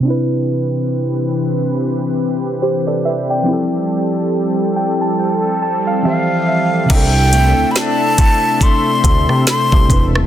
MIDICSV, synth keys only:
0, 0, Header, 1, 2, 480
1, 0, Start_track
1, 0, Key_signature, 0, "major"
1, 0, Tempo, 857143
1, 25, Time_signature, 4, 2, 24, 8
1, 5748, End_track
2, 0, Start_track
2, 0, Title_t, "Synth keys"
2, 0, Program_c, 0, 88
2, 0, Note_on_c, 0, 48, 63
2, 14, Note_on_c, 0, 60, 59
2, 27, Note_on_c, 0, 62, 56
2, 42, Note_on_c, 0, 64, 59
2, 56, Note_on_c, 0, 71, 68
2, 145, Control_c, 0, 64, 127
2, 1218, Note_off_c, 0, 71, 0
2, 1467, Note_on_c, 0, 72, 59
2, 1470, Note_on_c, 0, 67, 50
2, 1598, Note_off_c, 0, 72, 0
2, 1600, Note_off_c, 0, 67, 0
2, 1607, Note_on_c, 0, 74, 65
2, 1610, Note_on_c, 0, 69, 56
2, 1702, Note_off_c, 0, 74, 0
2, 1703, Note_off_c, 0, 69, 0
2, 1709, Note_on_c, 0, 76, 66
2, 1712, Note_on_c, 0, 71, 57
2, 1839, Note_off_c, 0, 76, 0
2, 1841, Note_off_c, 0, 71, 0
2, 1849, Note_on_c, 0, 79, 63
2, 1851, Note_on_c, 0, 74, 53
2, 1910, Note_off_c, 0, 48, 0
2, 1917, Note_off_c, 0, 60, 0
2, 1921, Note_on_c, 0, 53, 65
2, 1924, Note_off_c, 0, 62, 0
2, 1931, Note_off_c, 0, 64, 0
2, 1935, Note_on_c, 0, 60, 59
2, 1949, Note_on_c, 0, 64, 58
2, 1951, Control_c, 0, 64, 0
2, 1963, Note_on_c, 0, 67, 62
2, 1976, Note_on_c, 0, 69, 72
2, 2047, Control_c, 0, 64, 127
2, 2075, Note_off_c, 0, 79, 0
2, 2076, Note_off_c, 0, 74, 0
2, 2667, Note_on_c, 0, 79, 63
2, 2795, Note_off_c, 0, 79, 0
2, 2806, Note_on_c, 0, 81, 64
2, 2899, Note_off_c, 0, 81, 0
2, 2908, Note_on_c, 0, 79, 65
2, 3130, Note_off_c, 0, 79, 0
2, 3148, Note_on_c, 0, 81, 69
2, 3276, Note_off_c, 0, 81, 0
2, 3286, Note_on_c, 0, 77, 68
2, 3351, Note_off_c, 0, 53, 0
2, 3357, Note_off_c, 0, 60, 0
2, 3365, Note_off_c, 0, 64, 0
2, 3371, Note_off_c, 0, 67, 0
2, 3373, Note_on_c, 0, 53, 51
2, 3378, Note_off_c, 0, 69, 0
2, 3379, Note_off_c, 0, 77, 0
2, 3380, Note_on_c, 0, 60, 49
2, 3387, Note_on_c, 0, 76, 65
2, 3388, Note_on_c, 0, 52, 50
2, 3394, Note_on_c, 0, 67, 49
2, 3402, Note_on_c, 0, 72, 56
2, 3609, Note_off_c, 0, 76, 0
2, 3627, Note_on_c, 0, 76, 67
2, 3838, Note_on_c, 0, 48, 62
2, 3845, Note_off_c, 0, 60, 0
2, 3849, Note_off_c, 0, 76, 0
2, 3851, Note_on_c, 0, 60, 57
2, 3859, Note_off_c, 0, 53, 0
2, 3865, Note_on_c, 0, 62, 58
2, 3866, Note_off_c, 0, 52, 0
2, 3870, Note_off_c, 0, 67, 0
2, 3871, Control_c, 0, 64, 0
2, 3873, Note_off_c, 0, 72, 0
2, 3879, Note_on_c, 0, 64, 58
2, 3894, Note_on_c, 0, 69, 71
2, 3977, Control_c, 0, 64, 127
2, 5509, Note_off_c, 0, 48, 0
2, 5516, Note_off_c, 0, 60, 0
2, 5523, Note_off_c, 0, 62, 0
2, 5530, Note_off_c, 0, 64, 0
2, 5533, Note_on_c, 0, 48, 47
2, 5537, Note_off_c, 0, 69, 0
2, 5539, Note_on_c, 0, 60, 47
2, 5546, Note_on_c, 0, 62, 44
2, 5553, Note_on_c, 0, 64, 46
2, 5560, Note_on_c, 0, 71, 53
2, 5748, Note_off_c, 0, 48, 0
2, 5748, Note_off_c, 0, 60, 0
2, 5748, Note_off_c, 0, 62, 0
2, 5748, Note_off_c, 0, 64, 0
2, 5748, Note_off_c, 0, 71, 0
2, 5748, End_track
0, 0, End_of_file